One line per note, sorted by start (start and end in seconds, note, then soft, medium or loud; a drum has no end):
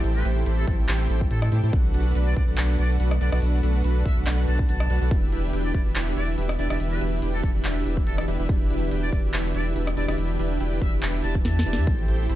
0.00 1.70 A3 medium
0.00 1.70 C4 medium
0.00 0.23 E4 medium
0.00 1.70 G4 medium
0.00 0.23 G4 medium
0.00 0.23 A4 medium
0.00 0.23 C5 medium
0.00 0.23 G5 medium
0.00 downlifter medium
0.04 0.23 A1 loud
0.04 closed hi-hat medium
0.16 0.25 B4 medium
0.25 0.44 A1 medium
0.25 0.44 E4 loud
0.25 0.44 G4 medium
0.25 0.44 A4 medium
0.25 0.44 C5 medium
0.25 0.44 G5 loud
0.25 closed hi-hat medium
0.46 0.66 A1 loud
0.46 0.65 E4 medium
0.46 0.65 G4 medium
0.46 0.65 A4 medium
0.46 0.65 C5 medium
0.46 0.65 B5 loud
0.46 closed hi-hat medium
0.58 0.64 A4 medium
0.67 0.77 A1 medium
0.67 0.76 E4 loud
0.67 0.76 G4 medium
0.67 0.76 A4 medium
0.67 0.75 A4 medium
0.67 0.76 C5 medium
0.67 0.76 G5 loud
0.67 kick medium
0.67 open hi-hat medium
0.79 0.87 A1 loud
0.79 0.86 E4 medium
0.79 0.86 G4 medium
0.79 0.86 A4 medium
0.79 0.86 C5 medium
0.79 0.86 G5 loud
0.89 1.08 A1 loud
0.89 1.07 E4 loud
0.89 1.07 G4 medium
0.89 1.07 A4 medium
0.89 1.07 C5 medium
0.89 1.07 G5 loud
0.89 clap loud
0.89 closed hi-hat medium
1.10 1.29 A1 loud
1.10 1.29 E4 medium
1.10 1.29 G4 medium
1.10 1.29 A4 medium
1.10 1.29 C5 medium
1.10 1.29 G5 loud
1.10 closed hi-hat medium
1.21 kick medium
1.31 1.50 A2 medium
1.31 1.43 E4 loud
1.31 1.43 G4 medium
1.31 1.43 A4 medium
1.31 1.38 A4 medium
1.31 1.43 C5 medium
1.31 1.43 G5 loud
1.31 closed hi-hat medium
1.42 1.49 A4 medium
1.42 cross-stick medium
1.52 1.61 A2 loud
1.52 1.61 E4 medium
1.52 1.61 G4 medium
1.52 1.61 A4 medium
1.52 1.61 C5 medium
1.52 1.61 G5 medium
1.52 closed hi-hat medium
1.63 1.71 A2 loud
1.63 1.72 E4 medium
1.63 1.72 G4 medium
1.63 1.72 A4 medium
1.63 1.72 C5 medium
1.63 1.72 G5 loud
1.73 1.92 B1 loud
1.73 5.08 A3 medium
1.73 11.83 B3 medium
1.73 11.83 D4 medium
1.73 1.92 D4 medium
1.73 1.92 F#4 medium
1.73 1.92 A4 medium
1.73 1.92 B4 medium
1.73 1.92 F#5 medium
1.73 kick loud
1.73 closed hi-hat medium
1.94 2.13 B1 loud
1.94 2.13 D4 loud
1.94 2.13 F#4 medium
1.94 2.13 A4 medium
1.94 2.13 B4 medium
1.94 2.13 F#5 loud
1.94 closed hi-hat medium
2.15 2.35 B1 loud
2.15 2.34 D4 medium
2.15 2.34 F#4 medium
2.15 2.34 A4 medium
2.15 2.34 B4 medium
2.15 2.34 B5 loud
2.15 closed hi-hat medium
2.27 2.33 D5 medium
2.36 2.46 B1 loud
2.36 2.45 D4 loud
2.36 2.45 F#4 medium
2.36 2.45 A4 medium
2.36 2.45 B4 medium
2.36 2.44 D5 medium
2.36 2.45 F#5 loud
2.36 kick medium
2.36 open hi-hat medium
2.48 2.56 B1 medium
2.48 2.55 D4 loud
2.48 2.55 F#4 medium
2.48 2.55 A4 medium
2.48 2.55 B4 medium
2.48 2.55 F#5 loud
2.58 2.77 B1 loud
2.58 2.76 D4 loud
2.58 2.76 F#4 medium
2.58 2.76 A4 medium
2.58 2.76 B4 medium
2.58 2.76 F#5 loud
2.58 clap loud
2.58 closed hi-hat medium
2.79 2.98 B1 loud
2.79 2.98 D4 medium
2.79 2.98 F#4 medium
2.79 2.98 A4 medium
2.79 2.98 B4 medium
2.79 2.89 D5 medium
2.79 2.98 F#5 medium
2.79 closed hi-hat medium
3.00 3.19 B1 loud
3.00 3.12 D4 loud
3.00 3.12 F#4 medium
3.00 3.12 A4 medium
3.00 3.12 B4 medium
3.00 3.12 F#5 loud
3.00 closed hi-hat medium
3.11 cross-stick medium
3.21 3.30 B1 medium
3.21 3.30 D4 medium
3.21 3.30 F#4 medium
3.21 3.30 A4 medium
3.21 3.30 B4 medium
3.21 3.28 D5 medium
3.21 3.30 F#5 medium
3.21 closed hi-hat medium
3.32 3.40 B1 loud
3.32 3.41 D4 medium
3.32 3.41 F#4 medium
3.32 3.41 A4 medium
3.32 3.41 B4 medium
3.32 3.39 D5 medium
3.32 3.41 F#5 loud
3.32 cross-stick medium
3.42 3.61 B1 loud
3.42 3.61 D4 medium
3.42 3.61 F#4 medium
3.42 3.61 A4 medium
3.42 3.61 B4 medium
3.42 3.61 F#5 medium
3.42 closed hi-hat medium
3.63 3.82 B1 loud
3.63 3.82 D4 loud
3.63 3.82 F#4 medium
3.63 3.82 A4 medium
3.63 3.82 B4 medium
3.63 3.82 F#5 loud
3.63 closed hi-hat medium
3.84 4.04 B1 loud
3.84 4.03 D4 medium
3.84 4.03 F#4 medium
3.84 4.03 A4 medium
3.84 4.03 B4 medium
3.84 4.03 B5 loud
3.84 closed hi-hat medium
4.05 4.15 B1 loud
4.05 4.14 D4 loud
4.05 4.14 F#4 medium
4.05 4.14 A4 medium
4.05 4.14 B4 medium
4.05 4.16 E5 medium
4.05 4.14 F#5 loud
4.05 kick medium
4.05 open hi-hat medium
4.17 4.25 B1 loud
4.17 4.24 D4 loud
4.17 4.24 F#4 medium
4.17 4.24 A4 medium
4.17 4.24 B4 medium
4.17 4.24 F#5 loud
4.27 4.46 B1 loud
4.27 4.45 D4 loud
4.27 4.45 F#4 medium
4.27 4.45 A4 medium
4.27 4.45 B4 medium
4.27 4.45 F#5 loud
4.27 cross-stick medium
4.27 clap loud
4.27 closed hi-hat medium
4.48 4.67 B1 loud
4.48 4.67 D4 medium
4.48 4.67 F#4 medium
4.48 4.67 A4 medium
4.48 4.67 B4 medium
4.48 4.67 F#5 medium
4.48 4.58 A5 medium
4.48 closed hi-hat medium
4.59 kick medium
4.69 4.88 B1 loud
4.69 4.81 D4 loud
4.69 4.81 F#4 medium
4.69 4.81 A4 medium
4.69 4.81 B4 medium
4.69 4.81 F#5 loud
4.69 5.16 A5 loud
4.69 closed hi-hat medium
4.80 cross-stick medium
4.90 4.99 B1 loud
4.90 4.99 D4 medium
4.90 4.99 F#4 medium
4.90 4.99 A4 medium
4.90 4.99 B4 medium
4.90 4.99 F#5 medium
4.90 closed hi-hat medium
5.01 5.13 B1 loud
5.01 5.10 D4 medium
5.01 5.10 F#4 medium
5.01 5.10 A4 medium
5.01 5.10 B4 medium
5.01 5.10 F#5 loud
5.11 5.30 E1 loud
5.11 11.83 E3 medium
5.11 5.30 D4 medium
5.11 5.30 E4 medium
5.11 11.83 F#4 medium
5.11 5.30 G4 medium
5.11 12.35 G4 medium
5.11 5.30 B4 medium
5.11 5.30 E5 medium
5.11 kick loud
5.11 closed hi-hat medium
5.32 5.52 E1 loud
5.32 5.51 D4 loud
5.32 5.51 E4 medium
5.32 5.51 G4 medium
5.32 5.51 B4 medium
5.32 5.51 E5 loud
5.32 closed hi-hat medium
5.53 5.73 E1 loud
5.53 5.72 D4 medium
5.53 5.72 E4 medium
5.53 5.72 G4 medium
5.53 5.72 B4 medium
5.53 5.72 G5 loud
5.53 closed hi-hat medium
5.65 5.71 D5 medium
5.75 5.84 E1 loud
5.75 5.83 D4 loud
5.75 5.83 E4 medium
5.75 5.83 G4 medium
5.75 5.83 B4 medium
5.75 5.82 D5 medium
5.75 5.83 E5 loud
5.75 kick medium
5.75 open hi-hat medium
5.86 5.94 E1 loud
5.86 5.93 D4 loud
5.86 5.93 E4 medium
5.86 5.93 G4 medium
5.86 5.93 B4 medium
5.86 5.93 E5 loud
5.96 6.15 E1 loud
5.96 6.14 D4 loud
5.96 6.14 E4 medium
5.96 6.14 G4 medium
5.96 6.14 B4 medium
5.96 6.14 E5 loud
5.96 clap loud
5.96 closed hi-hat medium
6.17 6.36 E1 loud
6.17 6.36 D4 medium
6.17 6.36 E4 medium
6.17 6.36 G4 medium
6.17 6.36 B4 medium
6.17 6.27 D5 medium
6.17 6.36 E5 medium
6.17 closed hi-hat medium
6.38 6.57 E1 loud
6.38 6.50 D4 loud
6.38 6.50 E4 medium
6.38 6.50 G4 medium
6.38 6.50 B4 medium
6.38 6.50 E5 loud
6.38 closed hi-hat medium
6.49 cross-stick medium
6.59 6.68 E1 loud
6.59 6.68 D4 medium
6.59 6.68 E4 medium
6.59 6.68 G4 medium
6.59 6.68 B4 medium
6.59 6.66 D5 medium
6.59 6.68 E5 medium
6.59 closed hi-hat medium
6.70 6.78 E1 loud
6.70 6.79 D4 medium
6.70 6.79 E4 medium
6.70 6.79 G4 medium
6.70 6.79 B4 medium
6.70 6.77 D5 medium
6.70 6.79 E5 loud
6.70 cross-stick medium
6.80 6.99 E1 loud
6.80 6.99 D4 medium
6.80 6.99 E4 medium
6.80 6.99 G4 medium
6.80 6.99 B4 medium
6.80 6.99 E5 medium
6.80 closed hi-hat medium
6.92 7.01 B4 medium
7.01 7.20 E1 loud
7.01 7.20 D4 loud
7.01 7.20 E4 medium
7.01 7.20 G4 medium
7.01 7.20 B4 medium
7.01 7.20 E5 loud
7.01 closed hi-hat medium
7.22 7.42 E1 medium
7.22 7.41 D4 medium
7.22 7.41 E4 medium
7.22 7.41 G4 medium
7.22 7.41 B4 medium
7.22 7.41 G5 loud
7.22 closed hi-hat medium
7.34 7.40 A4 medium
7.43 7.53 E1 loud
7.43 7.52 D4 medium
7.43 7.52 E4 medium
7.43 7.52 G4 medium
7.43 7.51 A4 medium
7.43 7.52 B4 medium
7.43 7.52 E5 loud
7.43 kick medium
7.43 open hi-hat medium
7.55 7.63 E1 loud
7.55 7.62 D4 loud
7.55 7.62 E4 medium
7.55 7.62 G4 medium
7.55 7.62 B4 medium
7.55 7.62 E5 loud
7.65 7.84 E1 loud
7.65 7.83 D4 loud
7.65 7.83 E4 medium
7.65 7.83 G4 medium
7.65 7.83 B4 medium
7.65 7.83 E5 loud
7.65 clap loud
7.65 closed hi-hat medium
7.86 8.05 E1 loud
7.86 8.05 D4 medium
7.86 8.05 E4 medium
7.86 8.05 G4 medium
7.86 8.05 B4 medium
7.86 8.05 E5 medium
7.86 closed hi-hat medium
7.97 kick medium
8.07 8.26 E1 loud
8.07 8.19 D4 loud
8.07 8.19 E4 medium
8.07 8.19 G4 medium
8.07 8.14 A4 medium
8.07 8.19 B4 medium
8.07 8.19 E5 loud
8.07 closed hi-hat medium
8.18 8.25 A4 medium
8.18 cross-stick medium
8.28 8.37 E1 loud
8.28 8.37 D4 medium
8.28 8.37 E4 medium
8.28 8.37 G4 medium
8.28 8.37 B4 medium
8.28 8.37 E5 medium
8.28 closed hi-hat medium
8.39 8.47 E1 loud
8.39 8.48 D4 medium
8.39 8.48 E4 medium
8.39 8.48 G4 medium
8.39 8.48 B4 medium
8.39 8.48 E5 loud
8.49 8.68 E1 loud
8.49 8.68 D4 medium
8.49 8.68 E4 medium
8.49 8.68 G4 medium
8.49 8.68 B4 medium
8.49 8.68 E5 medium
8.49 kick loud
8.49 closed hi-hat medium
8.70 8.89 E1 loud
8.70 8.89 D4 loud
8.70 8.89 E4 medium
8.70 8.89 G4 medium
8.70 8.89 B4 medium
8.70 8.89 E5 loud
8.70 closed hi-hat medium
8.91 9.11 E1 medium
8.91 9.10 D4 medium
8.91 9.10 E4 medium
8.91 9.10 G4 medium
8.91 9.10 B4 medium
8.91 9.10 G5 loud
8.91 closed hi-hat medium
9.03 9.09 D5 medium
9.13 9.22 E1 medium
9.13 9.21 D4 loud
9.13 9.21 E4 medium
9.13 9.21 G4 medium
9.13 9.21 B4 medium
9.13 9.20 D5 medium
9.13 9.21 E5 loud
9.13 kick medium
9.13 open hi-hat loud
9.24 9.32 E1 loud
9.24 9.31 D4 loud
9.24 9.31 E4 medium
9.24 9.31 G4 medium
9.24 9.31 B4 medium
9.24 9.31 E5 loud
9.34 9.53 E1 loud
9.34 9.52 D4 loud
9.34 9.52 E4 medium
9.34 9.52 G4 medium
9.34 9.52 B4 medium
9.34 9.52 E5 loud
9.34 clap loud
9.34 closed hi-hat medium
9.55 9.74 E1 loud
9.55 9.74 D4 medium
9.55 9.74 E4 medium
9.55 9.74 G4 medium
9.55 9.74 B4 medium
9.55 9.66 D5 loud
9.55 9.74 E5 medium
9.55 closed hi-hat medium
9.76 9.95 E1 loud
9.76 9.88 D4 loud
9.76 9.88 E4 medium
9.76 9.88 G4 medium
9.76 9.88 B4 medium
9.76 9.88 E5 loud
9.76 closed hi-hat medium
9.87 cross-stick medium
9.97 10.06 E1 loud
9.97 10.06 D4 medium
9.97 10.06 E4 medium
9.97 10.06 G4 medium
9.97 10.06 B4 medium
9.97 10.04 D5 medium
9.97 10.06 E5 medium
9.97 closed hi-hat medium
10.08 10.16 E1 loud
10.08 10.17 D4 medium
10.08 10.17 E4 medium
10.08 10.17 G4 medium
10.08 10.17 B4 medium
10.08 10.15 D5 medium
10.08 10.17 E5 loud
10.08 cross-stick medium
10.18 10.37 E1 loud
10.18 10.37 D4 medium
10.18 10.37 E4 medium
10.18 10.37 G4 medium
10.18 10.37 B4 medium
10.18 10.37 E5 medium
10.18 closed hi-hat medium
10.39 10.59 E1 loud
10.39 10.58 D4 loud
10.39 10.58 E4 medium
10.39 10.58 G4 medium
10.39 10.58 B4 medium
10.39 10.58 E5 loud
10.39 closed hi-hat medium
10.60 10.80 E1 loud
10.60 10.79 D4 medium
10.60 10.79 E4 medium
10.60 10.79 G4 medium
10.60 10.79 B4 medium
10.60 10.79 G5 loud
10.60 closed hi-hat medium
10.82 10.91 E1 medium
10.82 10.90 D4 loud
10.82 10.90 E4 medium
10.82 10.90 G4 medium
10.82 10.90 B4 medium
10.82 10.92 E5 medium
10.82 10.90 E5 loud
10.82 kick medium
10.82 open hi-hat medium
10.93 11.01 E1 loud
10.93 11.00 D4 loud
10.93 11.00 E4 medium
10.93 11.00 G4 medium
10.93 11.00 B4 medium
10.93 11.00 E5 loud
11.03 11.22 E1 loud
11.03 11.22 D4 loud
11.03 11.22 E4 medium
11.03 11.22 G4 medium
11.03 11.22 B4 medium
11.03 11.22 E5 loud
11.03 clap loud
11.03 closed hi-hat medium
11.24 11.43 E1 loud
11.24 11.43 D4 medium
11.24 11.43 E4 medium
11.24 11.43 G4 medium
11.24 11.43 B4 medium
11.24 11.43 E5 loud
11.24 11.35 A5 loud
11.24 closed hi-hat medium
11.35 kick medium
11.45 11.64 E2 loud
11.45 11.57 D4 medium
11.45 11.57 E4 medium
11.45 11.57 G4 medium
11.45 11.57 B4 medium
11.45 11.57 E5 loud
11.45 11.92 A5 medium
11.45 snare medium
11.45 closed hi-hat medium
11.59 snare medium
11.66 11.79 E1 loud
11.66 11.76 D4 medium
11.66 11.76 E4 medium
11.66 11.76 G4 medium
11.66 11.76 B4 medium
11.66 11.76 D5 loud
11.66 closed hi-hat medium
11.73 snare loud
11.77 11.89 E2 loud
11.77 11.85 D4 medium
11.77 11.85 E4 medium
11.77 11.85 G4 medium
11.77 11.85 B4 medium
11.77 11.85 E5 loud
11.87 12.06 A1 loud
11.87 12.35 A3 medium
11.87 12.35 C4 medium
11.87 12.06 E4 medium
11.87 12.06 G4 medium
11.87 12.06 A4 medium
11.87 12.06 C5 medium
11.87 12.06 G5 medium
11.87 kick loud
11.87 closed hi-hat medium
12.08 12.28 A1 loud
12.08 12.27 E4 loud
12.08 12.27 G4 medium
12.08 12.27 A4 medium
12.08 12.27 C5 medium
12.08 12.27 G5 loud
12.08 closed hi-hat medium
12.29 12.35 A1 loud
12.29 12.35 E4 medium
12.29 12.35 G4 medium
12.29 12.35 A4 medium
12.29 12.35 C5 medium
12.29 12.35 B5 loud
12.29 closed hi-hat medium